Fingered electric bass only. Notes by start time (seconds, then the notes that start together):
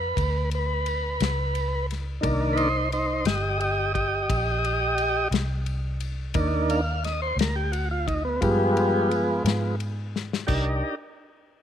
Already playing: F2
0.17 D2
1.20 C#2
2.23 C2
3.25 G1
4.30 A#1
5.31 C2
6.35 D#2
7.36 D2
8.42 G2
9.44 G#2
10.49 C2